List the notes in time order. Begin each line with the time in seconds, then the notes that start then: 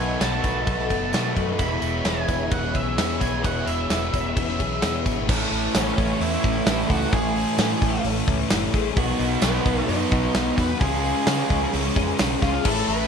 Already playing: B2 D#3 F#3 A3 B3 F#4 A4 D#5 F#5 G#5 B5
0.00 B1 A3 B3
0.20 B1 B2 D#3 F#3 A3 B3 F#4 A5, snare, tambourine, crash
0.43 B1 A3 B3 D#4 F#4, kick, tambourine, crash
0.66 B1 B2 F#3 A3 B3, kick, tambourine, crash
0.79 snare
0.90 F#1 F#3 B3 F#4, kick, tambourine, crash
1.12 B2 D#3 F#3 A3 B3 F#4, snare, tambourine, crash
1.36 F#2 A3 B3 F#4, kick, crash
1.58 E1 E2 B2 E3 G#3 B3 E4 G#4 C#5 E5 B5, kick, tambourine, crash
1.81 E1 E3 G#3 B3 E4, tambourine, crash
2.04 E1 E2 B2 E3 G#3 B3 E4 G#5, snare, tambourine, crash
2.27 E1 E3 G#3 B3 C#4 E4, kick, tambourine, crash
2.50 E1 E2 B2 E3 B3 F#5, kick, tambourine, crash
2.74 B1 B2 E3 G#4 E5, kick, tambourine, crash
2.96 E2 B2 E3 G#3 B3 E4, snare, tambourine, crash
3.20 B1 E3 G#3 B3 E4 G#4 G#5, kick, tambourine, crash
3.42 E1 E2 B2 E3 G#3 B3 E4 F#5, kick, tambourine, crash
3.66 E1 E3 G#3 B3 E4 E5, tambourine, crash
3.88 E1 E2 B2 E3 G#3 B3 E4, snare, tambourine, crash
3.93 E3
4.12 E1 E3 G#3 B3 C#4 E4, kick, tambourine, crash
4.36 E1 E2 B2 E3 B3, kick, tambourine, crash
4.48 snare
4.58 B1 B2 E3 G#4, kick, tambourine, crash
4.81 E2 B2 E3 G#3 B3 E4, snare, tambourine, crash
5.04 G#1 E3 G#3 B3 E4 G#4, kick, tambourine, crash
5.27 A1 A2 E3 A3 C#4 A4, kick, crash
5.50 A1 E3 A3, open hi-hat
5.73 A1 A2 E3 A3 C#4, snare, open hi-hat, tambourine
5.87 snare
5.97 A1 E3 A3, kick, open hi-hat
6.19 E2 A2 E3 A3 C#4 E4, open hi-hat
6.42 A1 E3 A3, kick, open hi-hat
6.65 A1 A2 E3 A3 C#4, snare, open hi-hat, tambourine
6.88 C#2 E3 A3 F#4, kick, open hi-hat
7.11 A1 A2 E3 A3 G#4, kick, open hi-hat
7.34 E3 A3, open hi-hat
7.57 A2 E3 A3, snare, open hi-hat, tambourine
7.80 A1 E3 A3, kick, open hi-hat
8.03 A1 A2 E3 A3 C#4, open hi-hat
8.27 C#2 E3 A3, kick, open hi-hat
8.49 F#1 A2 E3 A3 C#4, snare, open hi-hat, tambourine
8.72 A1 E3 A3 G#4, kick, open hi-hat
8.95 B1 B2 D#3 F#3 B3 D#4 F#4, kick, open hi-hat
9.19 B1 F#3 B3, open hi-hat
9.41 B1 B2 D#3 F#3 B3, snare, open hi-hat, tambourine
9.55 snare
9.64 B1 F#3 B3, kick, open hi-hat
9.87 F#2 B2 F#3 B3 D#4, open hi-hat
10.10 B1 F#3 B3 F#4, kick, open hi-hat
10.33 B1 B2 F#3 B3 D#4, snare, open hi-hat, tambourine
10.56 E2 F#3 B3 F#4 B4, kick, snare, open hi-hat
10.79 C#2 C#3 F3 G#3 C#4 F4 G#4, kick, open hi-hat
11.02 G#3 C#4, open hi-hat
11.26 C#3 F3 G#3 C#4, snare, open hi-hat, tambourine
11.39 snare
11.49 C#2 G#3 C#4, kick, open hi-hat
11.72 C#2 C#3 G#3 C#4, open hi-hat
11.95 F2 G#3 C#4 G#4, kick, open hi-hat
12.17 B1 C#3 G#3 C#4, snare, open hi-hat, tambourine
12.41 C#2 G#3 C#4 F4 G#4, kick, snare, open hi-hat
12.63 A1 A2 E3 A3 C#4 A4, kick, crash
12.68 E4
12.86 A1 E3 A3 B4, open hi-hat